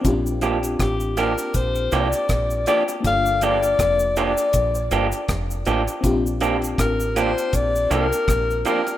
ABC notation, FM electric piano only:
X:1
M:4/4
L:1/8
Q:"Swing 16ths" 1/4=80
K:Bb
V:1 name="FM electric piano"
[C_D=DFG]8 | [B,DFA]8 | [CDFG]8 |]